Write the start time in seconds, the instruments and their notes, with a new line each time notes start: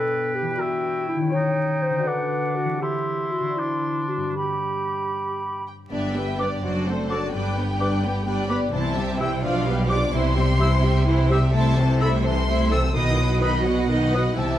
Already playing: harp B2 B3 D4 G4 B4, clarinet A4, oboe B4, flute G5
0.35 clarinet G4
0.42 harp E3
0.46 harp D4
0.51 harp G4
0.55 clarinet F#4, harp B4
0.60 oboe E4
1.08 clarinet E4
1.16 harp D#3
1.20 harp C#4
1.25 harp G4
1.29 oboe D#4, harp C#5, clarinet C#5
1.82 clarinet C5
1.90 harp D3
1.94 harp D4
1.99 harp F#4
2.03 harp A4, clarinet B4, flute F#5
2.07 oboe D4
2.56 clarinet F#4
2.65 harp E3
2.69 harp C4
2.74 harp G4
2.78 oboe E4, clarinet G4, harp C5
2.82 flute C6
3.32 clarinet F#4
3.40 harp D3
3.45 harp D4
3.50 harp F#4
3.54 clarinet E4, harp C5
3.59 oboe D4
4.08 clarinet F#4
4.17 harp G2
4.21 harp D4
4.26 harp G4
4.31 harp B4
4.35 clarinet G4, oboe G4, flute B5
5.67 violin section G5
5.91 double bass section G1, cello section G2, harp G2, viola section B3 D4, violin section G4 D5 E5
6.15 viola section G3 B3, harp D4, violin section B4 G5
6.38 viola section B3 D4, harp G4 B4, violin section G4 D5, clarinet B4, flute D6
6.62 double bass section F#1, cello section F#2, harp F#2, viola section F#3 D4, violin section F#4 C5 D5
6.86 viola section A3 C4, harp D4, violin section A4 C5
7.09 viola section F#3 D4, violin section F#4 D5 A5, clarinet A4, harp A4, flute D6
7.33 double bass section G1, cello section G2, harp G2, viola section G3 D4, violin section B4 D5 G5
7.55 viola section B3, harp B3, violin section G4 B4
7.79 viola section G3 D4, violin section B4 D5, clarinet B4, harp D5, flute D6
8.03 viola section B3, violin section G4 B4, harp G5
8.26 viola section G3 D4, violin section B4 D5, harp B4
8.49 viola section B3, violin section G4 B4 B5, clarinet B4, harp D5, flute D6
8.72 double bass section C2, cello section C3, harp C3, viola section E3 E4, violin section E4 C5 A5
8.95 viola section G3 C4, harp G3, violin section G4 E5
9.18 viola section E3 E4, violin section E4 C5 G5, clarinet G4, harp G4 E5, flute E6
9.42 double bass section B1, cello section B2, harp B2, viola section F3 D4, violin section F4 D5 F5
9.66 viola section G3 B3, harp G3, violin section G4 B4
9.89 viola section F3 D4, violin section F4 D5 D6, clarinet G4, harp G4 D5, flute D6
10.12 double bass section C2, cello section C3, harp C3, viola section E3 E4, violin section E4 C5 C6
10.36 harp G3, viola section G3 C4, violin section G4 E5
10.59 viola section E3 E4, violin section E4 C5, clarinet G4, harp E5, flute E6
10.83 viola section G3 C4, violin section G4 E5, harp G5
11.07 viola section E3 E4, violin section E4 C5, harp G4
11.31 viola section G3 C4, violin section G4 E5, clarinet G4, harp E5, flute E6
11.53 harp C3, viola section A3 E4, violin section C5 E5 A5
11.77 viola section E3 C4, harp A3, violin section A4 C5
12.00 viola section A3 E4, clarinet A4, violin section C5 E5 B5, harp E5, flute E6
12.24 viola section E3 C4, harp A4, violin section A4 C5 C6
12.47 viola section A3 E4, violin section C5 E5, harp E5
12.71 viola section E3 C4, harp E4, clarinet A4, violin section A4 C5 E6, flute E6
12.95 double bass section B1, cello section B2, harp B2, viola section D#3 D#4, violin section B4 D#5 D#6
13.18 viola section F#3 F#4, harp B3, violin section B4 D#5
13.41 viola section D#3 D#4, clarinet B4, harp B4, violin section B4 D#5 B5, flute D#6
13.64 viola section F#3 F#4, violin section B4 D#5 F#5, harp D#5
13.89 viola section D#3 D#4, harp B4, violin section B4 D#5
14.13 viola section F#3 F#4, harp D#4, clarinet B4, violin section B4 D#5, flute D#6
14.36 double bass section C2, harp C3, cello section C3, viola section E3 E4, violin section G4 E5 A5, clarinet C5, flute E6